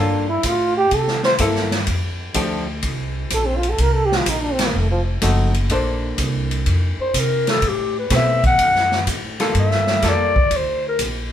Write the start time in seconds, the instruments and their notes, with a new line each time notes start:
Already playing: upright bass G2, hollow-body jazz guitar G3 A#3 F4 A4, trombone D4
0.29 trombone E4
0.43 upright bass A2, trombone F4, kick, hi-hat pedal, ride
0.77 trombone G4
0.91 upright bass C3, trombone A4, kick, ride
1.08 snare
1.23 trombone C5, snare
1.38 upright bass G2, hollow-body jazz guitar A#3 E4 A4, kick, hi-hat pedal, ride
1.55 snare
1.71 snare, ride
1.87 upright bass F2, kick, ride
2.34 upright bass D2, hollow-body jazz guitar F3 A3 D4 G4, kick, hi-hat pedal, ride
2.82 upright bass C2, kick, ride
3.30 upright bass A#1, trombone A4, kick, hi-hat pedal, ride
3.46 trombone C4
3.56 trombone F4
3.63 ride
3.69 trombone A4
3.78 upright bass C2, trombone A#4, kick, ride
3.95 trombone A4
4.05 trombone G4
4.12 snare
4.17 trombone F4
4.26 upright bass A#1, trombone D#4, kick, hi-hat pedal, ride
4.42 trombone D4
4.53 trombone C4
4.59 snare, ride
4.67 trombone A#3
4.74 upright bass F1, kick
4.79 trombone A3
4.91 trombone F3
5.22 upright bass F#1, hollow-body jazz guitar F3 A3 D#4 F#4, kick, hi-hat pedal, ride
5.54 ride
5.69 upright bass A#1, hollow-body jazz guitar A#3 D4 A4 C5, kick, ride
6.18 upright bass C2, kick, hi-hat pedal, ride
6.51 ride
6.66 upright bass F2, kick, ride
6.98 clarinet C5, muted upright bass stroke
7.14 upright bass C3, kick, hi-hat pedal, ride
7.19 clarinet A#4
7.47 clarinet A4, snare, ride
7.62 upright bass A2, kick, ride
7.68 clarinet G4
7.99 clarinet B4
8.10 upright bass B2, hollow-body jazz guitar A3 C4 G4 B4, kick, snare, hi-hat pedal, ride
8.16 clarinet E5
8.44 clarinet F#5, kick, ride
8.58 upright bass F#2, kick, ride
8.75 snare
8.92 snare
9.07 upright bass A2, kick, hi-hat pedal, ride
9.40 hollow-body jazz guitar G3 A#3 F4 A4, snare, ride
9.54 upright bass G2, kick, ride
9.59 clarinet E5
9.71 snare
9.87 snare
10.02 upright bass F2, hollow-body jazz guitar G3 A#3 F4 A4, kick, snare, hi-hat pedal, ride
10.09 clarinet D5
10.36 kick
10.51 upright bass D2, kick, ride
10.56 clarinet C5
10.88 clarinet A#4
10.99 upright bass A#1, kick, hi-hat pedal, ride